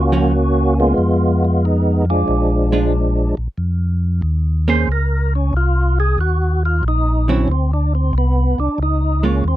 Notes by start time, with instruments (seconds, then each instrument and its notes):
Already playing: tonewheel organ C#2 A#3 C#4 F#4
0.12 hollow-body jazz guitar F3 A#3 C#4
0.80 tonewheel organ G#3 B3 F4
0.98 tonewheel organ F2
1.44 tonewheel organ F4
1.65 tonewheel organ D#4
2.10 tonewheel organ F3 G#3 D4
2.28 tonewheel organ A#1
2.72 hollow-body jazz guitar G#3 D4 F4
3.37 tonewheel organ A#1
3.58 tonewheel organ F2
4.22 tonewheel organ D#2
4.68 hollow-body jazz guitar A#3 C#4 G#4 C5, tonewheel organ C5
4.87 tonewheel organ C#2
4.92 tonewheel organ A#4
5.35 tonewheel organ C#4
5.53 tonewheel organ C2 F4
6.00 tonewheel organ G#4
6.18 tonewheel organ D#2 F#4
6.65 tonewheel organ F4
6.83 tonewheel organ A#1
6.88 tonewheel organ D#4
7.28 hollow-body jazz guitar D3 F#3 C4 E4, tonewheel organ C#4
7.48 tonewheel organ D2 C4
7.73 tonewheel organ D4
7.95 tonewheel organ C4
8.13 tonewheel organ C2
8.18 tonewheel organ B3
8.58 tonewheel organ C2 D4
8.78 tonewheel organ C#2
8.83 tonewheel organ D#4
9.23 hollow-body jazz guitar G#3 A#3 F4, tonewheel organ C#4
9.44 tonewheel organ D#2 C4